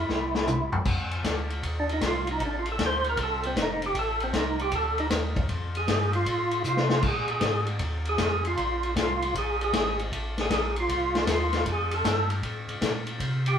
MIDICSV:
0, 0, Header, 1, 4, 480
1, 0, Start_track
1, 0, Tempo, 385852
1, 1075, Time_signature, 4, 2, 24, 8
1, 16902, End_track
2, 0, Start_track
2, 0, Title_t, "Tonewheel organ"
2, 0, Program_c, 0, 16
2, 0, Note_on_c, 0, 64, 74
2, 874, Note_off_c, 0, 64, 0
2, 2234, Note_on_c, 0, 62, 65
2, 2373, Note_off_c, 0, 62, 0
2, 2398, Note_on_c, 0, 63, 63
2, 2534, Note_off_c, 0, 63, 0
2, 2562, Note_on_c, 0, 65, 82
2, 2851, Note_off_c, 0, 65, 0
2, 2876, Note_on_c, 0, 63, 78
2, 3014, Note_off_c, 0, 63, 0
2, 3053, Note_on_c, 0, 62, 67
2, 3182, Note_off_c, 0, 62, 0
2, 3224, Note_on_c, 0, 65, 62
2, 3348, Note_off_c, 0, 65, 0
2, 3382, Note_on_c, 0, 69, 68
2, 3507, Note_off_c, 0, 69, 0
2, 3557, Note_on_c, 0, 72, 89
2, 3830, Note_off_c, 0, 72, 0
2, 3851, Note_on_c, 0, 70, 83
2, 3982, Note_off_c, 0, 70, 0
2, 4020, Note_on_c, 0, 69, 67
2, 4301, Note_off_c, 0, 69, 0
2, 4312, Note_on_c, 0, 60, 62
2, 4453, Note_off_c, 0, 60, 0
2, 4501, Note_on_c, 0, 63, 63
2, 4782, Note_off_c, 0, 63, 0
2, 4805, Note_on_c, 0, 67, 88
2, 4939, Note_off_c, 0, 67, 0
2, 4964, Note_on_c, 0, 69, 92
2, 5253, Note_off_c, 0, 69, 0
2, 5269, Note_on_c, 0, 60, 62
2, 5411, Note_off_c, 0, 60, 0
2, 5438, Note_on_c, 0, 63, 63
2, 5730, Note_off_c, 0, 63, 0
2, 5744, Note_on_c, 0, 67, 83
2, 5888, Note_off_c, 0, 67, 0
2, 5911, Note_on_c, 0, 69, 80
2, 6206, Note_off_c, 0, 69, 0
2, 6218, Note_on_c, 0, 63, 81
2, 6309, Note_off_c, 0, 63, 0
2, 7178, Note_on_c, 0, 68, 76
2, 7615, Note_off_c, 0, 68, 0
2, 7653, Note_on_c, 0, 65, 81
2, 8242, Note_off_c, 0, 65, 0
2, 8318, Note_on_c, 0, 65, 73
2, 8746, Note_off_c, 0, 65, 0
2, 8810, Note_on_c, 0, 68, 72
2, 9082, Note_off_c, 0, 68, 0
2, 9097, Note_on_c, 0, 68, 85
2, 9533, Note_off_c, 0, 68, 0
2, 10065, Note_on_c, 0, 68, 89
2, 10497, Note_off_c, 0, 68, 0
2, 10540, Note_on_c, 0, 65, 79
2, 11124, Note_off_c, 0, 65, 0
2, 11199, Note_on_c, 0, 65, 67
2, 11624, Note_off_c, 0, 65, 0
2, 11669, Note_on_c, 0, 68, 77
2, 11961, Note_off_c, 0, 68, 0
2, 11996, Note_on_c, 0, 68, 83
2, 12422, Note_off_c, 0, 68, 0
2, 12948, Note_on_c, 0, 68, 79
2, 13378, Note_off_c, 0, 68, 0
2, 13435, Note_on_c, 0, 65, 84
2, 14011, Note_off_c, 0, 65, 0
2, 14085, Note_on_c, 0, 65, 68
2, 14507, Note_off_c, 0, 65, 0
2, 14577, Note_on_c, 0, 68, 70
2, 14855, Note_off_c, 0, 68, 0
2, 14860, Note_on_c, 0, 69, 93
2, 15292, Note_off_c, 0, 69, 0
2, 16766, Note_on_c, 0, 67, 81
2, 16902, Note_off_c, 0, 67, 0
2, 16902, End_track
3, 0, Start_track
3, 0, Title_t, "Tonewheel organ"
3, 0, Program_c, 1, 16
3, 114, Note_on_c, 1, 36, 80
3, 865, Note_off_c, 1, 36, 0
3, 907, Note_on_c, 1, 36, 37
3, 990, Note_off_c, 1, 36, 0
3, 1061, Note_on_c, 1, 41, 72
3, 1535, Note_off_c, 1, 41, 0
3, 1550, Note_on_c, 1, 38, 84
3, 2020, Note_off_c, 1, 38, 0
3, 2027, Note_on_c, 1, 39, 72
3, 2499, Note_off_c, 1, 39, 0
3, 2505, Note_on_c, 1, 36, 79
3, 2978, Note_off_c, 1, 36, 0
3, 2978, Note_on_c, 1, 33, 76
3, 3455, Note_off_c, 1, 33, 0
3, 3462, Note_on_c, 1, 38, 81
3, 3937, Note_off_c, 1, 38, 0
3, 3943, Note_on_c, 1, 36, 82
3, 4418, Note_off_c, 1, 36, 0
3, 4430, Note_on_c, 1, 29, 81
3, 4901, Note_off_c, 1, 29, 0
3, 4909, Note_on_c, 1, 33, 79
3, 5381, Note_off_c, 1, 33, 0
3, 5390, Note_on_c, 1, 36, 97
3, 5861, Note_off_c, 1, 36, 0
3, 5870, Note_on_c, 1, 38, 76
3, 6341, Note_off_c, 1, 38, 0
3, 6349, Note_on_c, 1, 39, 85
3, 6820, Note_off_c, 1, 39, 0
3, 6833, Note_on_c, 1, 41, 76
3, 7302, Note_off_c, 1, 41, 0
3, 7310, Note_on_c, 1, 43, 92
3, 7780, Note_off_c, 1, 43, 0
3, 7781, Note_on_c, 1, 45, 80
3, 8255, Note_off_c, 1, 45, 0
3, 8266, Note_on_c, 1, 48, 82
3, 8737, Note_off_c, 1, 48, 0
3, 8741, Note_on_c, 1, 46, 78
3, 9215, Note_off_c, 1, 46, 0
3, 9221, Note_on_c, 1, 44, 88
3, 9690, Note_on_c, 1, 39, 78
3, 9694, Note_off_c, 1, 44, 0
3, 10168, Note_off_c, 1, 39, 0
3, 10177, Note_on_c, 1, 41, 85
3, 10652, Note_off_c, 1, 41, 0
3, 10658, Note_on_c, 1, 34, 81
3, 11132, Note_off_c, 1, 34, 0
3, 11145, Note_on_c, 1, 36, 83
3, 11615, Note_off_c, 1, 36, 0
3, 11630, Note_on_c, 1, 34, 76
3, 12097, Note_off_c, 1, 34, 0
3, 12104, Note_on_c, 1, 32, 85
3, 12574, Note_off_c, 1, 32, 0
3, 12588, Note_on_c, 1, 33, 83
3, 13056, Note_off_c, 1, 33, 0
3, 13061, Note_on_c, 1, 34, 92
3, 13532, Note_off_c, 1, 34, 0
3, 13547, Note_on_c, 1, 36, 77
3, 14015, Note_off_c, 1, 36, 0
3, 14020, Note_on_c, 1, 39, 87
3, 14492, Note_off_c, 1, 39, 0
3, 14501, Note_on_c, 1, 41, 76
3, 14972, Note_off_c, 1, 41, 0
3, 14983, Note_on_c, 1, 43, 87
3, 15453, Note_off_c, 1, 43, 0
3, 15463, Note_on_c, 1, 45, 78
3, 15764, Note_off_c, 1, 45, 0
3, 15781, Note_on_c, 1, 45, 40
3, 15864, Note_off_c, 1, 45, 0
3, 15942, Note_on_c, 1, 46, 90
3, 16411, Note_on_c, 1, 48, 86
3, 16412, Note_off_c, 1, 46, 0
3, 16886, Note_off_c, 1, 48, 0
3, 16902, End_track
4, 0, Start_track
4, 0, Title_t, "Drums"
4, 113, Note_on_c, 9, 38, 45
4, 238, Note_off_c, 9, 38, 0
4, 431, Note_on_c, 9, 38, 66
4, 556, Note_off_c, 9, 38, 0
4, 587, Note_on_c, 9, 47, 57
4, 588, Note_on_c, 9, 44, 53
4, 711, Note_off_c, 9, 47, 0
4, 712, Note_off_c, 9, 44, 0
4, 900, Note_on_c, 9, 43, 86
4, 1024, Note_off_c, 9, 43, 0
4, 1062, Note_on_c, 9, 49, 69
4, 1065, Note_on_c, 9, 36, 63
4, 1186, Note_off_c, 9, 49, 0
4, 1189, Note_off_c, 9, 36, 0
4, 1385, Note_on_c, 9, 51, 43
4, 1509, Note_off_c, 9, 51, 0
4, 1546, Note_on_c, 9, 38, 60
4, 1547, Note_on_c, 9, 36, 20
4, 1547, Note_on_c, 9, 44, 56
4, 1547, Note_on_c, 9, 51, 61
4, 1670, Note_off_c, 9, 38, 0
4, 1671, Note_off_c, 9, 36, 0
4, 1672, Note_off_c, 9, 44, 0
4, 1672, Note_off_c, 9, 51, 0
4, 1869, Note_on_c, 9, 51, 44
4, 1994, Note_off_c, 9, 51, 0
4, 2028, Note_on_c, 9, 36, 25
4, 2031, Note_on_c, 9, 51, 55
4, 2152, Note_off_c, 9, 36, 0
4, 2155, Note_off_c, 9, 51, 0
4, 2354, Note_on_c, 9, 51, 45
4, 2478, Note_off_c, 9, 51, 0
4, 2502, Note_on_c, 9, 38, 63
4, 2504, Note_on_c, 9, 44, 54
4, 2504, Note_on_c, 9, 51, 61
4, 2507, Note_on_c, 9, 36, 24
4, 2627, Note_off_c, 9, 38, 0
4, 2628, Note_off_c, 9, 44, 0
4, 2628, Note_off_c, 9, 51, 0
4, 2632, Note_off_c, 9, 36, 0
4, 2825, Note_on_c, 9, 51, 44
4, 2949, Note_off_c, 9, 51, 0
4, 2985, Note_on_c, 9, 51, 55
4, 2987, Note_on_c, 9, 36, 22
4, 3110, Note_off_c, 9, 51, 0
4, 3112, Note_off_c, 9, 36, 0
4, 3303, Note_on_c, 9, 51, 42
4, 3427, Note_off_c, 9, 51, 0
4, 3467, Note_on_c, 9, 36, 25
4, 3467, Note_on_c, 9, 38, 65
4, 3468, Note_on_c, 9, 44, 54
4, 3468, Note_on_c, 9, 51, 67
4, 3591, Note_off_c, 9, 38, 0
4, 3592, Note_off_c, 9, 36, 0
4, 3593, Note_off_c, 9, 44, 0
4, 3593, Note_off_c, 9, 51, 0
4, 3785, Note_on_c, 9, 51, 42
4, 3909, Note_off_c, 9, 51, 0
4, 3945, Note_on_c, 9, 51, 60
4, 3951, Note_on_c, 9, 36, 25
4, 4070, Note_off_c, 9, 51, 0
4, 4075, Note_off_c, 9, 36, 0
4, 4271, Note_on_c, 9, 51, 45
4, 4395, Note_off_c, 9, 51, 0
4, 4432, Note_on_c, 9, 36, 21
4, 4434, Note_on_c, 9, 38, 63
4, 4435, Note_on_c, 9, 44, 60
4, 4435, Note_on_c, 9, 51, 59
4, 4557, Note_off_c, 9, 36, 0
4, 4558, Note_off_c, 9, 38, 0
4, 4560, Note_off_c, 9, 44, 0
4, 4560, Note_off_c, 9, 51, 0
4, 4750, Note_on_c, 9, 51, 46
4, 4875, Note_off_c, 9, 51, 0
4, 4912, Note_on_c, 9, 36, 19
4, 4912, Note_on_c, 9, 51, 59
4, 5036, Note_off_c, 9, 51, 0
4, 5037, Note_off_c, 9, 36, 0
4, 5227, Note_on_c, 9, 51, 43
4, 5351, Note_off_c, 9, 51, 0
4, 5392, Note_on_c, 9, 38, 63
4, 5393, Note_on_c, 9, 44, 61
4, 5393, Note_on_c, 9, 51, 56
4, 5394, Note_on_c, 9, 36, 20
4, 5516, Note_off_c, 9, 38, 0
4, 5517, Note_off_c, 9, 44, 0
4, 5517, Note_off_c, 9, 51, 0
4, 5519, Note_off_c, 9, 36, 0
4, 5714, Note_on_c, 9, 51, 44
4, 5839, Note_off_c, 9, 51, 0
4, 5865, Note_on_c, 9, 51, 58
4, 5871, Note_on_c, 9, 36, 26
4, 5990, Note_off_c, 9, 51, 0
4, 5996, Note_off_c, 9, 36, 0
4, 6194, Note_on_c, 9, 51, 45
4, 6318, Note_off_c, 9, 51, 0
4, 6348, Note_on_c, 9, 38, 66
4, 6349, Note_on_c, 9, 44, 57
4, 6349, Note_on_c, 9, 51, 64
4, 6351, Note_on_c, 9, 36, 18
4, 6473, Note_off_c, 9, 38, 0
4, 6474, Note_off_c, 9, 44, 0
4, 6474, Note_off_c, 9, 51, 0
4, 6476, Note_off_c, 9, 36, 0
4, 6673, Note_on_c, 9, 36, 63
4, 6673, Note_on_c, 9, 51, 44
4, 6797, Note_off_c, 9, 36, 0
4, 6798, Note_off_c, 9, 51, 0
4, 6827, Note_on_c, 9, 51, 53
4, 6832, Note_on_c, 9, 36, 19
4, 6951, Note_off_c, 9, 51, 0
4, 6957, Note_off_c, 9, 36, 0
4, 7150, Note_on_c, 9, 51, 44
4, 7275, Note_off_c, 9, 51, 0
4, 7311, Note_on_c, 9, 36, 20
4, 7311, Note_on_c, 9, 38, 67
4, 7313, Note_on_c, 9, 44, 56
4, 7313, Note_on_c, 9, 51, 60
4, 7435, Note_off_c, 9, 36, 0
4, 7436, Note_off_c, 9, 38, 0
4, 7437, Note_off_c, 9, 44, 0
4, 7437, Note_off_c, 9, 51, 0
4, 7627, Note_on_c, 9, 51, 43
4, 7751, Note_off_c, 9, 51, 0
4, 7789, Note_on_c, 9, 36, 21
4, 7790, Note_on_c, 9, 51, 67
4, 7913, Note_off_c, 9, 36, 0
4, 7914, Note_off_c, 9, 51, 0
4, 8102, Note_on_c, 9, 51, 46
4, 8226, Note_off_c, 9, 51, 0
4, 8258, Note_on_c, 9, 44, 62
4, 8382, Note_off_c, 9, 44, 0
4, 8420, Note_on_c, 9, 38, 53
4, 8545, Note_off_c, 9, 38, 0
4, 8578, Note_on_c, 9, 38, 73
4, 8702, Note_off_c, 9, 38, 0
4, 8739, Note_on_c, 9, 49, 71
4, 8743, Note_on_c, 9, 36, 69
4, 8863, Note_off_c, 9, 49, 0
4, 8868, Note_off_c, 9, 36, 0
4, 9053, Note_on_c, 9, 51, 45
4, 9177, Note_off_c, 9, 51, 0
4, 9213, Note_on_c, 9, 38, 60
4, 9214, Note_on_c, 9, 44, 49
4, 9214, Note_on_c, 9, 51, 64
4, 9222, Note_on_c, 9, 36, 21
4, 9338, Note_off_c, 9, 38, 0
4, 9339, Note_off_c, 9, 44, 0
4, 9339, Note_off_c, 9, 51, 0
4, 9346, Note_off_c, 9, 36, 0
4, 9535, Note_on_c, 9, 51, 47
4, 9660, Note_off_c, 9, 51, 0
4, 9692, Note_on_c, 9, 51, 63
4, 9699, Note_on_c, 9, 36, 27
4, 9817, Note_off_c, 9, 51, 0
4, 9824, Note_off_c, 9, 36, 0
4, 10017, Note_on_c, 9, 51, 44
4, 10141, Note_off_c, 9, 51, 0
4, 10175, Note_on_c, 9, 38, 64
4, 10176, Note_on_c, 9, 44, 56
4, 10176, Note_on_c, 9, 51, 64
4, 10182, Note_on_c, 9, 36, 24
4, 10299, Note_off_c, 9, 38, 0
4, 10301, Note_off_c, 9, 44, 0
4, 10301, Note_off_c, 9, 51, 0
4, 10306, Note_off_c, 9, 36, 0
4, 10507, Note_on_c, 9, 51, 46
4, 10631, Note_off_c, 9, 51, 0
4, 10665, Note_on_c, 9, 51, 56
4, 10666, Note_on_c, 9, 36, 22
4, 10790, Note_off_c, 9, 51, 0
4, 10791, Note_off_c, 9, 36, 0
4, 10985, Note_on_c, 9, 51, 41
4, 11109, Note_off_c, 9, 51, 0
4, 11147, Note_on_c, 9, 36, 26
4, 11150, Note_on_c, 9, 38, 69
4, 11151, Note_on_c, 9, 44, 50
4, 11151, Note_on_c, 9, 51, 61
4, 11272, Note_off_c, 9, 36, 0
4, 11274, Note_off_c, 9, 38, 0
4, 11275, Note_off_c, 9, 44, 0
4, 11275, Note_off_c, 9, 51, 0
4, 11473, Note_on_c, 9, 51, 51
4, 11597, Note_off_c, 9, 51, 0
4, 11629, Note_on_c, 9, 36, 24
4, 11635, Note_on_c, 9, 51, 66
4, 11753, Note_off_c, 9, 36, 0
4, 11760, Note_off_c, 9, 51, 0
4, 11955, Note_on_c, 9, 51, 42
4, 12079, Note_off_c, 9, 51, 0
4, 12107, Note_on_c, 9, 38, 70
4, 12109, Note_on_c, 9, 44, 56
4, 12109, Note_on_c, 9, 51, 67
4, 12110, Note_on_c, 9, 36, 20
4, 12232, Note_off_c, 9, 38, 0
4, 12233, Note_off_c, 9, 44, 0
4, 12233, Note_off_c, 9, 51, 0
4, 12234, Note_off_c, 9, 36, 0
4, 12431, Note_on_c, 9, 51, 48
4, 12556, Note_off_c, 9, 51, 0
4, 12590, Note_on_c, 9, 36, 21
4, 12596, Note_on_c, 9, 51, 58
4, 12715, Note_off_c, 9, 36, 0
4, 12721, Note_off_c, 9, 51, 0
4, 12907, Note_on_c, 9, 38, 43
4, 12909, Note_on_c, 9, 51, 46
4, 13032, Note_off_c, 9, 38, 0
4, 13033, Note_off_c, 9, 51, 0
4, 13066, Note_on_c, 9, 38, 67
4, 13067, Note_on_c, 9, 44, 53
4, 13067, Note_on_c, 9, 51, 69
4, 13068, Note_on_c, 9, 36, 23
4, 13191, Note_off_c, 9, 38, 0
4, 13192, Note_off_c, 9, 36, 0
4, 13192, Note_off_c, 9, 44, 0
4, 13192, Note_off_c, 9, 51, 0
4, 13387, Note_on_c, 9, 51, 49
4, 13511, Note_off_c, 9, 51, 0
4, 13546, Note_on_c, 9, 36, 22
4, 13551, Note_on_c, 9, 51, 66
4, 13670, Note_off_c, 9, 36, 0
4, 13676, Note_off_c, 9, 51, 0
4, 13869, Note_on_c, 9, 38, 57
4, 13870, Note_on_c, 9, 51, 45
4, 13993, Note_off_c, 9, 38, 0
4, 13995, Note_off_c, 9, 51, 0
4, 14020, Note_on_c, 9, 38, 69
4, 14022, Note_on_c, 9, 44, 57
4, 14022, Note_on_c, 9, 51, 73
4, 14023, Note_on_c, 9, 36, 25
4, 14145, Note_off_c, 9, 38, 0
4, 14146, Note_off_c, 9, 44, 0
4, 14146, Note_off_c, 9, 51, 0
4, 14147, Note_off_c, 9, 36, 0
4, 14338, Note_on_c, 9, 38, 40
4, 14339, Note_on_c, 9, 51, 48
4, 14462, Note_off_c, 9, 38, 0
4, 14463, Note_off_c, 9, 51, 0
4, 14502, Note_on_c, 9, 51, 59
4, 14503, Note_on_c, 9, 36, 24
4, 14627, Note_off_c, 9, 51, 0
4, 14628, Note_off_c, 9, 36, 0
4, 14819, Note_on_c, 9, 51, 50
4, 14943, Note_off_c, 9, 51, 0
4, 14983, Note_on_c, 9, 36, 19
4, 14987, Note_on_c, 9, 38, 71
4, 14988, Note_on_c, 9, 44, 57
4, 14988, Note_on_c, 9, 51, 61
4, 15108, Note_off_c, 9, 36, 0
4, 15111, Note_off_c, 9, 38, 0
4, 15112, Note_off_c, 9, 44, 0
4, 15112, Note_off_c, 9, 51, 0
4, 15299, Note_on_c, 9, 51, 49
4, 15424, Note_off_c, 9, 51, 0
4, 15463, Note_on_c, 9, 36, 21
4, 15464, Note_on_c, 9, 51, 54
4, 15587, Note_off_c, 9, 36, 0
4, 15589, Note_off_c, 9, 51, 0
4, 15782, Note_on_c, 9, 51, 47
4, 15906, Note_off_c, 9, 51, 0
4, 15941, Note_on_c, 9, 36, 21
4, 15942, Note_on_c, 9, 38, 66
4, 15944, Note_on_c, 9, 44, 55
4, 15944, Note_on_c, 9, 51, 69
4, 16066, Note_off_c, 9, 36, 0
4, 16067, Note_off_c, 9, 38, 0
4, 16068, Note_off_c, 9, 44, 0
4, 16068, Note_off_c, 9, 51, 0
4, 16254, Note_on_c, 9, 51, 46
4, 16378, Note_off_c, 9, 51, 0
4, 16419, Note_on_c, 9, 36, 25
4, 16423, Note_on_c, 9, 51, 59
4, 16543, Note_off_c, 9, 36, 0
4, 16547, Note_off_c, 9, 51, 0
4, 16743, Note_on_c, 9, 51, 49
4, 16867, Note_off_c, 9, 51, 0
4, 16902, End_track
0, 0, End_of_file